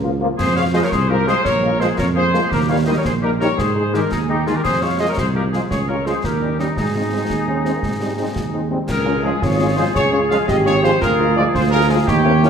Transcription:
Already playing: C#2
0.03 F3 A#3 F4
0.21 F3 A#3 F4
0.38 F2 G#4 C5, concert bass drum, snare, crash
0.56 F3 G#3 F4 C#5 F5
0.74 F3 G#3 F4 C5 D#5
0.83 A#4 C#5
0.90 C2 G#4 C5, concert bass drum, snare
1.09 F3 G#3 F4 G4 A#4
1.27 F3 G#3 F4 G#4 C5, snare
1.44 A#1 A#4 C#5, concert bass drum, snare
1.63 G#3 A#3 F4
1.79 F3 G#3 A#3 F4 G#4 C5, snare
1.97 F2 A#4 C#5, concert bass drum, snare
2.15 G#3 A#3 F4 G#4 C5
2.34 F3 G#3 A#3 F4, snare
2.50 D#2 G4 A#4, concert bass drum, snare
2.69 G3 A#3 D#4 C#5 F5
2.86 D#3 G3 A#3 D#4 C5 D#5
2.96 A#4 C#5
3.04 A#1 G#4 C5, concert bass drum, snare
3.22 G3 A#3 D#4 G4 A#4
3.40 D#3 G3 A#3 D#4 A#4 C#5, snare
3.58 G#2 G#4 C5, concert bass drum, snare
3.76 G#3 D#4
3.93 D#3 G#3 D#4 G4 A#4, snare
4.11 D#2 D#4 G#4, concert bass drum, snare
4.28 G#3 D#4 G4
4.46 D#3 G#3 D#4 F4 G#4, snare
4.55 G4 A#4
4.63 F2 G#4 C5, concert bass drum, snare, crash
4.82 G#3 F4 C#5 F5
5.00 F3 G#3 F4 C5 D#5
5.08 A#4 C#5
5.17 C2 G#4 C5, concert bass drum, snare
5.35 G#3 F4 G4 A#4
5.53 F3 G#3 F4 G#4 C5, snare
5.70 C#2 G#4 C#5, concert bass drum, snare
5.88 G#3 C#4 F4 A#4 C#5
6.06 F3 G#3 C#4 F4 G#4 C5, snare
6.23 D#2 G4 A#4, concert bass drum, snare
6.41 G3 C#4 D#4
6.58 G3 C#4 D#4 G4, snare
6.76 G#2 D#4 G#4, concert bass drum, snare
6.96 G#3 C4 D#4
7.12 G#3 C4 D#4
7.29 D#2 G#3, concert bass drum, snare
7.48 G#3 C4 C#4 D#4
7.65 G#3 C4 D#4, snare
7.74 A#3
7.82 G#2 G#3, concert bass drum, snare
8.00 G3 G#3 C4 D#4
8.17 G#3 C4 D#4
8.35 D#2 G#3, concert bass drum, snare
8.53 G#3 C4 D#4
8.71 G3 G#3 C4 D#4
8.88 C#2 F4 G#4 A#4, concert bass drum, snare, crash
9.06 G#3 C#4 F4
9.23 F3 G#3 C#4 F4 G#4
9.42 G#1 F4 C#5, concert bass drum, snare
9.59 G#3 C#4 F4
9.76 F3 G#3 C#4 F4 C5
9.94 C#2 G#4 C#5, concert bass drum, snare
10.12 G#3 C#4 F4 C#5
10.29 F3 G#3 C#4 F4 F5, snare
10.48 G#1 G4 D#5, concert bass drum, snare
10.65 G#3 C#4 F4 C#5, snare
10.83 F3 G#3 C#4 F4 C5, snare
11.01 D2 F4 G#4 A#4, concert bass drum, snare
11.19 G#3 F4
11.36 F3 G#3 F4 D5
11.53 D2 C5, concert bass drum, snare
11.71 G#3 F4 A#4
11.89 F3 G#3 F4 G#4
12.07 D#2 D#4 E4 G4 C#5, concert bass drum, snare
12.24 A#3 C4 C#4 E4
12.43 E3 A#3 C#4 E4, snare

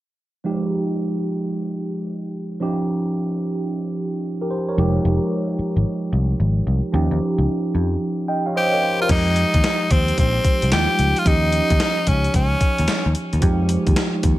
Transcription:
0.44 F3 G#3 D#4 G4
2.60 F3 C#4 D#4 G4
4.41 G4 A#4
4.51 C5
4.69 A#4 C#5
4.77 F1 F3 G#3 D#4 G4
5.05 F1
5.59 muted picked electric bass stroke
5.76 G#1
6.13 C2
6.40 G#1
6.67 C2
6.92 D#2 F3 C#4 D#4 G4
7.11 D#2
7.38 C#2
7.75 F2
8.28 D#5 G5
8.46 C#5 F5
8.56 G4 C5 D#5
8.73 A#4 C#5
8.83 C5
9.00 F4 G4 A#4
9.09 F2 F3 G#3 D#4 G4, kick, closed hi-hat, crash
9.36 closed hi-hat
9.54 D#2, kick, closed hi-hat
9.64 snare, closed hi-hat
9.91 D#2 C4, kick, closed hi-hat
10.08 closed hi-hat
10.18 A#1 C4, kick, closed hi-hat
10.45 kick, closed hi-hat
10.62 C2, closed hi-hat
10.71 D#2 F3 G3 D#4 F4 G4, snare, closed hi-hat
10.78 G#3
10.99 C#2, closed hi-hat
11.16 F4, closed hi-hat
11.25 D#2 F3 C#4 D#4 G4, kick, closed hi-hat
11.52 closed hi-hat
11.70 D#2, kick, closed hi-hat
11.80 snare, closed hi-hat
12.07 C#2 C#4, kick, closed hi-hat
12.24 closed hi-hat
12.34 C#2 C#4, kick, closed hi-hat
12.61 kick, closed hi-hat
12.78 D#2, closed hi-hat
12.88 muted picked electric bass stroke, snare, closed hi-hat
13.06 D#2
13.15 closed hi-hat
13.33 D#2, closed hi-hat
13.41 F2 F3 G#3 D#4 G4, kick, closed hi-hat
13.69 closed hi-hat
13.87 D#2, kick, closed hi-hat
13.96 snare, closed hi-hat
14.23 D#2, kick, closed hi-hat

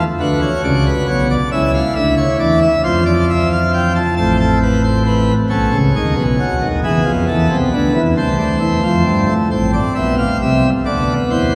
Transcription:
0.20 D2 D3 F#4 B4
0.42 C#5
0.64 C#2 C#3 D5
0.87 B4
1.08 B1 B2 C#5
1.30 D5
1.52 C#2 C#3 E4 E5
1.75 F5
1.96 D2 D3 E5
2.17 C#5
2.39 E2 E3 D5
2.62 E5
2.84 F2 F3 F4 C5
3.06 D5
3.30 E5
3.53 F5
3.74 G5
3.96 A5
4.17 A1 A2 C4 A5
4.40 A4
4.63 B4
4.84 C5
5.06 B4
5.49 B1 B2 C#4 A4
5.73 C#2 C#3
5.96 D#2 D#3 G#4
6.16 B1 B2
6.39 C#2 C#3 F#4
6.62 D#2 D#3
6.84 E2 E3 B3 G#4
7.05 F2 F3
7.28 E2 E3 A4
7.51 C2 C3
7.73 D2 D3 B4
7.94 E2 E3
8.16 C2 C3 A3 C5
8.38 D2 D3
8.60 E2 E3
8.83 F2 F3
9.06 G2 G3
9.29 A3
9.51 A1 A2 C4 C5
9.74 D5
9.95 B1 B2 E5
10.18 F5
10.41 C2 C3 E5
10.86 D2 D3 B3 D5
11.30 E2 E3 C5

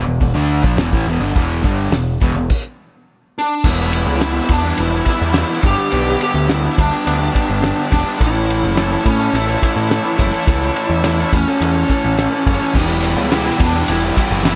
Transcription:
0.06 E1 E2 B2
0.20 E1 E2 B2, kick, open hi-hat
0.34 D2 D3 A3 D4
0.50 open hi-hat
0.63 A#1 A#2 F3, kick
0.76 E1 E2 B2, snare, open hi-hat
0.92 A1 A2 E3, kick
1.06 E1 E2 B2, open hi-hat
1.20 G1 G2 D3
1.36 E1 E2 B2 E3, kick, open hi-hat
1.64 G1 G2 D3 G3, kick, open hi-hat
1.90 E1 E2, snare, open hi-hat
1.94 B2
2.22 E1 E2 B2, kick, open hi-hat
2.35 E1 E2 B2
2.50 kick, crash
3.39 D4
3.64 E1 E2 B2 E3 G3 B3 E4, kick, crash
3.93 ride
4.07 C#2
4.20 E2 B2 E3 G3 B3 E4, snare, ride
4.33 E3 G3 B3 E4
4.48 E2 D4, muted overdriven electric guitar stroke, kick, ride
4.61 E3 G3 B3 E4
4.77 E1 E3 G3 B3 E4, ride
4.91 E3 G3 B3 E4
5.04 E3 G3 B3 E4, kick, ride
5.10 E4
5.21 E2
5.32 E2 B2 E3 G3 B3 E4, snare, ride
5.39 E4
5.48 E3 G3 B3 E4
5.61 G1 G2 D3 G3 B3 D4 G4, kick, ride
5.66 G4
5.76 G3 B3 D4 G4
5.90 B1 G2 D3 G3 B3 D4 G4, ride
6.21 G4, ride
6.34 D2
6.48 G2 D3 G3 B3 D4 E4 G4, snare, ride
6.64 G3 B3 D4 G4
6.77 D2 D4, muted overdriven electric guitar stroke, kick, ride
6.91 G3 B3 D4 G4
7.05 D2 G3 B3 D4 G4, ride
7.18 G3 B3 D4 G4
7.33 G3 B3 D4 G4, kick, ride
7.49 G1
7.61 G2 D3 G3 B3 D4 G4, snare, ride
7.76 G3 B3 D4 G4
7.90 E1 G3 B3 D4 G4, kick, ride
8.03 G3 B3 D4 G4
8.17 A1 A2 E3 A3 C#4 A4, kick, ride
8.23 E4
8.50 ride
8.63 F#1
8.76 A2 E3 A3 C#4 A4, snare, ride
8.91 A3 C#4 A4
9.03 A2, muted overdriven electric guitar stroke, kick, ride
9.08 C#4
9.19 A3 C#4 A4
9.33 A1 E3 A3 C#4 E4 A4, ride
9.47 A3 C#4 A4
9.61 E3 A3 C#4 E4 A4, kick, ride
9.76 A2
9.90 A2 E3 A3 C#4 A4, snare, ride
10.04 A3 C#4 A4
10.18 F#1 E3 A3 C#4 E4 A4, kick, ride
10.32 A3 C#4 A4
10.46 C#2 A2 E3 A3 C#4 A4, kick, ride
10.76 ride
10.90 E2
11.03 A2 E3 A3 C#4 E4 A4, snare, ride
11.19 A3 C#4 A4
11.32 E2 C#4, muted overdriven electric guitar stroke, kick, ride
11.48 A3 C#4 A4
11.61 E2 E3 A3 C#4 A4, ride
11.74 A3 C#4 A4
11.89 E3 A3 C#4 A4, kick, ride
12.04 A1
12.17 A2 E3 A3 C#4 A4, snare, ride
12.31 A3 C#4 A4
12.45 F#1 E3 A3 C#4 A4, kick, ride
12.50 C#4
12.59 A3 C#4 A4, snare
12.74 E1 E2 B2 E3 G3 B3 E4 G4, kick, crash
12.88 E3 G3 B3 G4
13.02 E3 G3 B3 G4, ride
13.17 C#2 E3 G3 B3 G4
13.32 E2 B2 E3 G3 B3 E4 G4, snare, ride
13.46 E3 G3 E4 G4
13.59 E2 E3 G3 B3 G4, muted overdriven electric guitar stroke, kick, ride
13.64 D4
13.74 E3 G3 B3 E4 G4
13.88 E1 E3 G3 E4 G4, ride
14.03 E3 G3 E4 G4
14.16 E3 G3 B3 E4 G4, kick, ride
14.29 F#1 E3 G3 B3 G4
14.45 E2 B2 E3 G3 B3 E4 G4, snare, ride

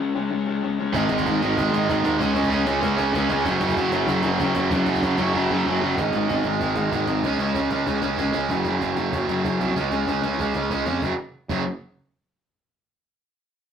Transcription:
0.00 C#3 G#3 C#4
0.15 C#3 G#3 C#4
0.31 C#3 G#3 C#4
0.48 C#3 G#3 C#4
0.64 C#3 G#3 C#4
0.79 C#3 G#3 C#4
0.94 G#1 G#2 D#3 G#3, cajon bass
1.09 G#1 G#2 D#3 G#3, cajon slap
1.18 cajon bass
1.25 G#1 G#2 D#3 G#3, cajon bass
1.42 G#1 G#2 D#3 G#3, cajon slap
1.57 G#1 G#2 D#3 G#3, cajon bass
1.72 G#1 G#2 D#3 G#3, cajon slap
1.88 G#1 G#2 D#3 G#3, cajon bass
2.04 D#2 G#2 D#3 G#3, cajon slap
2.19 C#2 C#3 G#3 C#4, cajon bass
2.35 C#2 C#3 G#3 C#4, cajon slap
2.44 cajon bass
2.51 C#2 C#3 G#3 C#4, cajon bass
2.66 C#2 C#3 G#3 C#4, cajon slap
2.82 C#2 C#3 G#3 C#4, cajon bass
2.98 C#2 C#3 G#3 C#4, cajon slap
3.14 C#2 C#3 G#3 C#4, cajon bass
3.29 C#2 C#3 G#3 C#4, cajon slap
3.44 F#1 F#2 C#3 F#3, cajon bass
3.61 F#1 F#2 C#3 F#3, cajon slap
3.69 cajon bass
3.76 F#1 F#2 C#3 F#3, cajon bass
3.92 F#1 F#2 C#3 F#3, cajon slap
4.07 F#1 F#2 C#3 F#3, cajon bass
4.23 F#1 F#2 C#3 F#3, cajon slap
4.39 F#1 F#2 C#3 F#3, cajon bass
4.55 F#1 F#2 C#3 F#3, cajon slap
4.71 F#1 F#2 C#3 F#3, cajon bass
4.86 F#1 F#2 C#3 F#3, cajon slap
4.95 cajon bass
5.02 F#1 F#2 C#3 F#3, cajon bass
5.18 F#1 F#2 C#3 F#3, cajon slap
5.35 F#1 F#2 C#3 F#3
5.50 F#1 F#2 C#3 F#3
5.66 F#1 F#2 C#3 F#3
5.82 F#1 F#2 C#3 F#3
5.97 G#1 G#2 D#3 G#3, cajon bass
6.12 G#1 G#2 D#3 G#3, cajon slap
6.29 G#1 G#2 D#3 G#3, cajon bass
6.44 G#1 G#2 D#3 G#3, cajon slap
6.60 G#1 G#2 D#3 G#3, cajon bass
6.75 G#1 G#2 D#3 G#3, cajon slap
6.92 G#1 G#2 D#3 G#3, cajon bass
7.07 G#1 G#2 D#3 G#3, cajon slap
7.23 C#2 C#3 G#3 C#4, cajon bass
7.39 C#2 C#3 G#3 C#4, cajon slap
7.55 C#2 C#3 G#3 C#4, cajon bass
7.71 C#2 C#3 G#3 C#4, cajon slap
7.86 C#2 C#3 G#3 C#4, cajon bass
8.02 C#2 C#3 G#3 C#4, cajon slap
8.18 C#2 C#3 G#3 C#4, cajon bass
8.33 C#2 C#3 G#3 C#4, cajon slap
8.49 F#1 F#2 C#3 F#3, cajon bass
8.63 F#1 F#2 C#3 F#3, cajon slap
8.68 F#2 C#3 F#3
8.81 F#1 F#2 C#3 F#3, cajon bass
8.97 F#1 F#2 C#3 F#3, cajon slap
9.12 F#1 F#2 C#3 F#3, cajon bass
9.28 F#1 F#2 C#3 F#3, cajon slap
9.45 F#1 F#2 C#3 F#3, cajon bass
9.60 C2 F#2 C#3 F#3, cajon slap
9.76 C#2 C#3 G#3 C#4, cajon bass
9.91 C#2 G#3 C#4, cajon slap
9.95 C#3
10.07 C#2 C#3 G#3 C#4, cajon bass
10.23 C#2 G#3 C#4, cajon slap
10.27 C#3
10.39 C#2 C#3 G#3 C#4, cajon bass
10.54 C#2 C#3 G#3 C#4, cajon slap
10.71 C#2 C#3 G#3 C#4, cajon bass
10.86 F2 C#3 G#3 C#4, cajon slap
11.02 F#1 F#2 C#3 F#3, cajon bass, cajon slap
11.49 F#1 F#2 C#3 F#3, cajon bass

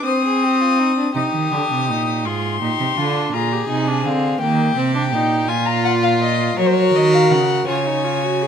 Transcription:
0.05 C4 C5 D#6
0.25 G#4
0.43 G4
0.61 F4
0.79 D#4
0.98 D4
1.15 C3 D#4 G4 D#6
1.34 D#3
1.51 D3 D4
1.72 C3
1.89 A#2 D#4
2.25 G#2 F4 G#4 C6
2.62 A#2 D#4 G4
2.80 C3
2.97 D3 D4 F4
3.33 A#2 F4 G#4 A#5
3.52 G4
3.69 C3 D#4 G#5
3.88 D4
4.05 D3 C4 F5
4.41 D#3 A#3 G4 G5
4.76 C3 C4
4.95 D4
5.12 A#2 D#4
5.48 A#2 F4 G#5
5.66 A#5
5.84 F#5
6.02 F5
6.21 D#5
6.57 F#3 F#4 A#4 C#5
6.66 C5
6.73 C#5
6.95 D#3 D#5
7.14 F5
7.31 C#3 F#5
7.67 C#3 F4 C#5 G#5
7.87 D#4
8.04 F4
8.23 F#4
8.43 G#4

